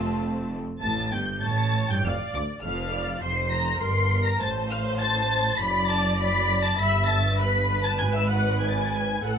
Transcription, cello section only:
0, 0, Header, 1, 2, 480
1, 0, Start_track
1, 0, Tempo, 616016
1, 641, Time_signature, 2, 2, 24, 8
1, 1593, Tempo, 595238
1, 6393, Tempo, 633580
1, 7444, End_track
2, 0, Start_track
2, 0, Title_t, "Cello section"
2, 0, Program_c, 0, 48
2, 0, Note_on_c, 0, 41, 68
2, 465, Note_off_c, 0, 41, 0
2, 636, Note_on_c, 0, 45, 83
2, 860, Note_off_c, 0, 45, 0
2, 877, Note_on_c, 0, 43, 78
2, 1116, Note_on_c, 0, 45, 83
2, 1118, Note_off_c, 0, 43, 0
2, 1473, Note_on_c, 0, 43, 76
2, 1474, Note_off_c, 0, 45, 0
2, 1589, Note_off_c, 0, 43, 0
2, 1592, Note_on_c, 0, 41, 74
2, 1656, Note_off_c, 0, 41, 0
2, 1831, Note_on_c, 0, 38, 70
2, 1896, Note_off_c, 0, 38, 0
2, 2070, Note_on_c, 0, 41, 84
2, 2535, Note_off_c, 0, 41, 0
2, 2544, Note_on_c, 0, 41, 70
2, 2993, Note_off_c, 0, 41, 0
2, 3027, Note_on_c, 0, 43, 69
2, 3506, Note_off_c, 0, 43, 0
2, 3506, Note_on_c, 0, 45, 71
2, 4440, Note_off_c, 0, 45, 0
2, 4458, Note_on_c, 0, 42, 84
2, 5401, Note_off_c, 0, 42, 0
2, 5419, Note_on_c, 0, 43, 80
2, 6372, Note_off_c, 0, 43, 0
2, 6390, Note_on_c, 0, 44, 82
2, 7348, Note_on_c, 0, 45, 57
2, 7349, Note_off_c, 0, 44, 0
2, 7444, Note_off_c, 0, 45, 0
2, 7444, End_track
0, 0, End_of_file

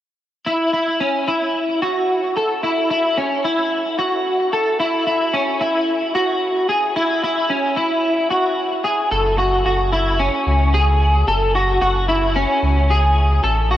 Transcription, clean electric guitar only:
0, 0, Header, 1, 2, 480
1, 0, Start_track
1, 0, Key_signature, 3, "minor"
1, 0, Tempo, 540541
1, 416, Time_signature, 4, 2, 24, 8
1, 12228, End_track
2, 0, Start_track
2, 0, Title_t, "Clean electric guitar"
2, 0, Program_c, 0, 27
2, 413, Note_on_c, 0, 64, 69
2, 641, Note_off_c, 0, 64, 0
2, 651, Note_on_c, 0, 64, 54
2, 892, Note_on_c, 0, 61, 64
2, 894, Note_off_c, 0, 64, 0
2, 1134, Note_on_c, 0, 64, 56
2, 1135, Note_off_c, 0, 61, 0
2, 1614, Note_off_c, 0, 64, 0
2, 1618, Note_on_c, 0, 66, 64
2, 2097, Note_off_c, 0, 66, 0
2, 2100, Note_on_c, 0, 69, 56
2, 2333, Note_off_c, 0, 69, 0
2, 2337, Note_on_c, 0, 64, 67
2, 2567, Note_off_c, 0, 64, 0
2, 2578, Note_on_c, 0, 64, 64
2, 2817, Note_off_c, 0, 64, 0
2, 2818, Note_on_c, 0, 61, 65
2, 3057, Note_off_c, 0, 61, 0
2, 3057, Note_on_c, 0, 64, 54
2, 3534, Note_off_c, 0, 64, 0
2, 3538, Note_on_c, 0, 66, 63
2, 4017, Note_off_c, 0, 66, 0
2, 4021, Note_on_c, 0, 69, 65
2, 4256, Note_off_c, 0, 69, 0
2, 4259, Note_on_c, 0, 64, 78
2, 4490, Note_off_c, 0, 64, 0
2, 4500, Note_on_c, 0, 64, 63
2, 4738, Note_on_c, 0, 61, 65
2, 4739, Note_off_c, 0, 64, 0
2, 4978, Note_off_c, 0, 61, 0
2, 4980, Note_on_c, 0, 64, 64
2, 5457, Note_off_c, 0, 64, 0
2, 5461, Note_on_c, 0, 66, 67
2, 5937, Note_off_c, 0, 66, 0
2, 5940, Note_on_c, 0, 68, 60
2, 6178, Note_off_c, 0, 68, 0
2, 6182, Note_on_c, 0, 64, 73
2, 6415, Note_off_c, 0, 64, 0
2, 6425, Note_on_c, 0, 64, 62
2, 6658, Note_on_c, 0, 61, 65
2, 6661, Note_off_c, 0, 64, 0
2, 6896, Note_on_c, 0, 64, 59
2, 6897, Note_off_c, 0, 61, 0
2, 7371, Note_off_c, 0, 64, 0
2, 7375, Note_on_c, 0, 66, 65
2, 7848, Note_off_c, 0, 66, 0
2, 7851, Note_on_c, 0, 68, 58
2, 8089, Note_off_c, 0, 68, 0
2, 8093, Note_on_c, 0, 69, 74
2, 8327, Note_off_c, 0, 69, 0
2, 8330, Note_on_c, 0, 66, 66
2, 8564, Note_off_c, 0, 66, 0
2, 8575, Note_on_c, 0, 66, 66
2, 8809, Note_off_c, 0, 66, 0
2, 8812, Note_on_c, 0, 64, 65
2, 9052, Note_on_c, 0, 61, 67
2, 9054, Note_off_c, 0, 64, 0
2, 9534, Note_off_c, 0, 61, 0
2, 9534, Note_on_c, 0, 68, 69
2, 10011, Note_off_c, 0, 68, 0
2, 10015, Note_on_c, 0, 69, 73
2, 10254, Note_off_c, 0, 69, 0
2, 10258, Note_on_c, 0, 66, 67
2, 10483, Note_off_c, 0, 66, 0
2, 10493, Note_on_c, 0, 66, 71
2, 10728, Note_off_c, 0, 66, 0
2, 10732, Note_on_c, 0, 64, 60
2, 10974, Note_off_c, 0, 64, 0
2, 10975, Note_on_c, 0, 61, 80
2, 11456, Note_off_c, 0, 61, 0
2, 11459, Note_on_c, 0, 68, 64
2, 11928, Note_off_c, 0, 68, 0
2, 11932, Note_on_c, 0, 69, 76
2, 12170, Note_off_c, 0, 69, 0
2, 12174, Note_on_c, 0, 66, 70
2, 12228, Note_off_c, 0, 66, 0
2, 12228, End_track
0, 0, End_of_file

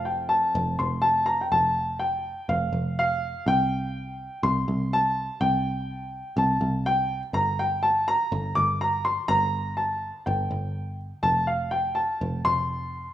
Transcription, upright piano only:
0, 0, Header, 1, 2, 480
1, 0, Start_track
1, 0, Key_signature, -1, "major"
1, 0, Tempo, 485830
1, 1508, Time_signature, 4, 2, 24, 8
1, 12977, End_track
2, 0, Start_track
2, 0, Title_t, "Upright piano"
2, 0, Program_c, 0, 0
2, 51, Note_on_c, 0, 79, 66
2, 284, Note_off_c, 0, 79, 0
2, 285, Note_on_c, 0, 81, 84
2, 778, Note_on_c, 0, 84, 74
2, 792, Note_off_c, 0, 81, 0
2, 1004, Note_on_c, 0, 81, 91
2, 1031, Note_off_c, 0, 84, 0
2, 1244, Note_on_c, 0, 82, 85
2, 1263, Note_off_c, 0, 81, 0
2, 1395, Note_on_c, 0, 79, 59
2, 1432, Note_off_c, 0, 82, 0
2, 1486, Note_off_c, 0, 79, 0
2, 1499, Note_on_c, 0, 81, 93
2, 1970, Note_on_c, 0, 79, 75
2, 1996, Note_off_c, 0, 81, 0
2, 2460, Note_on_c, 0, 77, 76
2, 2471, Note_off_c, 0, 79, 0
2, 2938, Note_off_c, 0, 77, 0
2, 2953, Note_on_c, 0, 77, 94
2, 3392, Note_off_c, 0, 77, 0
2, 3435, Note_on_c, 0, 79, 97
2, 4345, Note_off_c, 0, 79, 0
2, 4380, Note_on_c, 0, 84, 89
2, 4871, Note_off_c, 0, 84, 0
2, 4874, Note_on_c, 0, 81, 93
2, 5342, Note_on_c, 0, 79, 88
2, 5358, Note_off_c, 0, 81, 0
2, 6304, Note_on_c, 0, 81, 81
2, 6325, Note_off_c, 0, 79, 0
2, 6779, Note_on_c, 0, 79, 95
2, 6792, Note_off_c, 0, 81, 0
2, 7111, Note_off_c, 0, 79, 0
2, 7253, Note_on_c, 0, 82, 96
2, 7500, Note_off_c, 0, 82, 0
2, 7502, Note_on_c, 0, 79, 87
2, 7732, Note_on_c, 0, 81, 91
2, 7745, Note_off_c, 0, 79, 0
2, 7980, Note_off_c, 0, 81, 0
2, 7981, Note_on_c, 0, 82, 97
2, 8425, Note_off_c, 0, 82, 0
2, 8451, Note_on_c, 0, 86, 92
2, 8676, Note_off_c, 0, 86, 0
2, 8705, Note_on_c, 0, 82, 91
2, 8939, Note_on_c, 0, 84, 87
2, 8948, Note_off_c, 0, 82, 0
2, 9171, Note_on_c, 0, 82, 112
2, 9185, Note_off_c, 0, 84, 0
2, 9622, Note_off_c, 0, 82, 0
2, 9651, Note_on_c, 0, 81, 74
2, 10137, Note_on_c, 0, 79, 69
2, 10151, Note_off_c, 0, 81, 0
2, 10822, Note_off_c, 0, 79, 0
2, 11093, Note_on_c, 0, 81, 94
2, 11322, Note_off_c, 0, 81, 0
2, 11334, Note_on_c, 0, 77, 77
2, 11570, Note_on_c, 0, 79, 82
2, 11588, Note_off_c, 0, 77, 0
2, 11802, Note_off_c, 0, 79, 0
2, 11806, Note_on_c, 0, 81, 76
2, 12265, Note_off_c, 0, 81, 0
2, 12298, Note_on_c, 0, 84, 98
2, 12977, Note_off_c, 0, 84, 0
2, 12977, End_track
0, 0, End_of_file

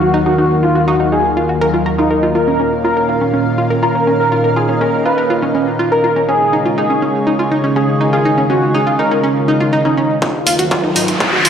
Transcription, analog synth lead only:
0, 0, Header, 1, 2, 480
1, 0, Start_track
1, 0, Key_signature, -6, "minor"
1, 0, Tempo, 491803
1, 375, Time_signature, 4, 2, 24, 8
1, 11218, End_track
2, 0, Start_track
2, 0, Title_t, "Analog synth lead"
2, 0, Program_c, 0, 81
2, 0, Note_on_c, 0, 66, 92
2, 177, Note_off_c, 0, 66, 0
2, 256, Note_on_c, 0, 66, 93
2, 537, Note_off_c, 0, 66, 0
2, 616, Note_on_c, 0, 65, 92
2, 803, Note_off_c, 0, 65, 0
2, 856, Note_on_c, 0, 66, 85
2, 1043, Note_off_c, 0, 66, 0
2, 1095, Note_on_c, 0, 68, 84
2, 1283, Note_off_c, 0, 68, 0
2, 1936, Note_on_c, 0, 63, 93
2, 2217, Note_off_c, 0, 63, 0
2, 2296, Note_on_c, 0, 70, 98
2, 2672, Note_off_c, 0, 70, 0
2, 2776, Note_on_c, 0, 70, 91
2, 3151, Note_off_c, 0, 70, 0
2, 3735, Note_on_c, 0, 70, 94
2, 4017, Note_off_c, 0, 70, 0
2, 4096, Note_on_c, 0, 70, 95
2, 4377, Note_off_c, 0, 70, 0
2, 4455, Note_on_c, 0, 68, 86
2, 4643, Note_off_c, 0, 68, 0
2, 4695, Note_on_c, 0, 70, 89
2, 4883, Note_off_c, 0, 70, 0
2, 4935, Note_on_c, 0, 71, 87
2, 5123, Note_off_c, 0, 71, 0
2, 5777, Note_on_c, 0, 70, 97
2, 6058, Note_off_c, 0, 70, 0
2, 6136, Note_on_c, 0, 68, 99
2, 6512, Note_off_c, 0, 68, 0
2, 6617, Note_on_c, 0, 68, 92
2, 6992, Note_off_c, 0, 68, 0
2, 7574, Note_on_c, 0, 68, 89
2, 7857, Note_off_c, 0, 68, 0
2, 7935, Note_on_c, 0, 68, 96
2, 8217, Note_off_c, 0, 68, 0
2, 8295, Note_on_c, 0, 66, 89
2, 8483, Note_off_c, 0, 66, 0
2, 8535, Note_on_c, 0, 68, 89
2, 8723, Note_off_c, 0, 68, 0
2, 8775, Note_on_c, 0, 70, 87
2, 8963, Note_off_c, 0, 70, 0
2, 9615, Note_on_c, 0, 63, 97
2, 9897, Note_off_c, 0, 63, 0
2, 9975, Note_on_c, 0, 65, 103
2, 10351, Note_off_c, 0, 65, 0
2, 10455, Note_on_c, 0, 65, 95
2, 10831, Note_off_c, 0, 65, 0
2, 11218, End_track
0, 0, End_of_file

